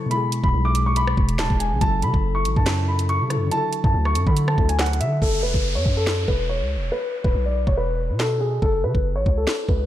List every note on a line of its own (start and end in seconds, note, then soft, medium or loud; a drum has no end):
0.00 0.14 C#3 medium
0.00 0.13 F#3 medium
0.00 0.13 E4 medium
0.00 0.13 A4 medium
0.06 1.75 B2 medium
0.06 1.77 G#3 medium
0.11 1.79 E4 medium
0.11 0.42 B5 medium
0.11 closed hi-hat medium
0.17 1.81 G#4 medium
0.32 closed hi-hat medium
0.44 0.53 D1 loud
0.44 0.63 B5 medium
0.44 kick medium
0.54 1.15 B1 loud
0.65 0.84 D6 medium
0.75 closed hi-hat medium
0.86 0.95 C#6 medium
0.96 1.36 B5 loud
0.96 closed hi-hat medium
1.07 cross-stick loud
1.17 1.40 E1 loud
1.17 kick medium
1.29 closed hi-hat medium
1.39 1.49 D1 loud
1.39 1.58 A5 medium
1.39 snare loud
1.39 clap medium
1.39 closed hi-hat medium
1.50 1.73 E1 loud
1.50 kick medium
1.60 1.79 G#5 medium
1.60 closed hi-hat medium
1.71 1.81 B1 loud
1.76 3.25 C#3 medium
1.76 3.27 F#3 medium
1.81 2.04 F#1 loud
1.81 3.28 E4 medium
1.81 2.00 A5 loud
1.81 kick loud
1.81 closed hi-hat medium
1.87 3.30 A4 medium
2.02 2.13 C#3 loud
2.02 2.34 B5 medium
2.02 closed hi-hat medium
2.14 2.47 F#1 loud
2.14 kick loud
2.35 2.54 C#6 medium
2.45 2.56 A1 loud
2.45 closed hi-hat medium
2.56 3.22 F#2 loud
2.56 2.86 A5 medium
2.56 kick loud
2.66 snare loud
2.66 clap loud
2.66 closed hi-hat medium
2.88 3.07 B5 medium
2.99 closed hi-hat medium
3.09 3.49 C#6 medium
3.09 closed hi-hat soft
3.20 3.37 C#3 loud
3.28 3.50 C#3 medium
3.28 3.49 F#3 medium
3.28 3.52 E4 soft
3.28 cross-stick medium
3.28 closed hi-hat medium
3.33 3.51 F#2 loud
3.33 3.53 A4 medium
3.46 4.53 D3 medium
3.46 4.55 F#3 medium
3.51 4.57 E4 medium
3.51 3.82 A5 loud
3.51 closed hi-hat medium
3.57 4.59 A4 medium
3.73 closed hi-hat medium
3.84 3.94 F#2 loud
3.84 4.03 A5 medium
3.84 kick medium
3.94 4.17 D2 loud
4.05 4.25 C#6 medium
4.05 cross-stick medium
4.15 4.26 F#2 loud
4.15 closed hi-hat medium
4.27 4.57 D3 loud
4.27 4.46 B5 medium
4.27 kick loud
4.37 closed hi-hat medium
4.48 4.67 A5 medium
4.48 cross-stick loud
4.55 5.02 D2 loud
4.55 5.20 D3 soft
4.55 5.21 F#3 soft
4.55 5.22 E4 soft
4.55 kick medium
4.61 5.23 A4 medium
4.69 4.78 G#5 medium
4.69 closed hi-hat medium
4.79 4.98 F#5 medium
4.79 snare loud
4.79 clap medium
4.79 closed hi-hat medium
4.86 closed hi-hat medium
4.93 closed hi-hat medium
5.00 5.21 D3 loud
5.00 5.19 E5 medium
5.00 closed hi-hat medium
5.22 5.44 F#1 loud
5.22 5.41 A4 medium
5.22 kick loud
5.22 downlifter medium
5.43 5.54 E1 loud
5.43 5.74 B4 medium
5.54 5.77 F#1 loud
5.54 kick medium
5.75 5.85 F#2 loud
5.75 5.94 C#5 medium
5.86 6.26 F#2 loud
5.86 kick medium
5.97 6.26 A4 medium
6.07 snare loud
6.07 clap medium
6.28 6.62 E1 loud
6.28 6.47 B4 medium
6.28 kick medium
6.49 6.89 C#5 medium
6.61 6.78 C#2 loud
6.76 6.91 E1 loud
6.92 7.23 B4 medium
7.24 7.34 D1 loud
7.24 7.43 B4 medium
7.24 kick medium
7.34 7.66 B1 loud
7.46 7.65 D5 medium
7.67 8.11 E1 loud
7.67 7.76 C#5 medium
7.67 kick loud
7.77 8.17 B4 medium
8.10 8.60 B2 loud
8.20 8.39 A4 medium
8.20 snare loud
8.20 clap medium
8.41 8.60 G#4 medium
8.62 8.85 F#1 loud
8.62 8.81 A4 loud
8.62 kick loud
8.83 8.94 C#3 medium
8.83 9.14 B4 medium
8.95 9.18 F#1 loud
8.95 kick medium
9.16 9.26 A1 loud
9.16 9.35 C#5 medium
9.26 9.46 C#2 loud
9.26 kick medium
9.37 9.67 A4 medium
9.47 snare loud
9.47 clap medium
9.69 9.86 C#2 loud
9.69 9.86 B4 medium
9.69 kick medium